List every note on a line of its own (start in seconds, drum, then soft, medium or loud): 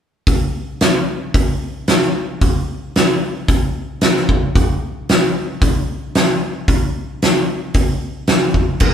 0.27 kick medium
0.27 open hi-hat soft
0.81 snare loud
0.81 open hi-hat soft
1.34 kick medium
1.34 open hi-hat soft
1.87 snare loud
1.87 open hi-hat soft
2.02 snare soft
2.41 kick medium
2.41 open hi-hat soft
2.95 snare loud
2.95 open hi-hat soft
3.48 kick loud
3.48 open hi-hat soft
4.01 snare loud
4.01 open hi-hat soft
4.16 snare soft
4.29 kick medium
4.55 kick medium
4.55 open hi-hat soft
5.09 snare loud
5.09 open hi-hat soft
5.62 kick loud
5.62 open hi-hat soft
6.15 snare loud
6.15 open hi-hat soft
6.68 kick medium
6.68 open hi-hat soft
7.22 snare loud
7.22 open hi-hat soft
7.74 kick medium
7.74 open hi-hat soft
8.27 snare loud
8.27 open hi-hat soft
8.54 kick medium
8.80 kick loud
8.80 crash medium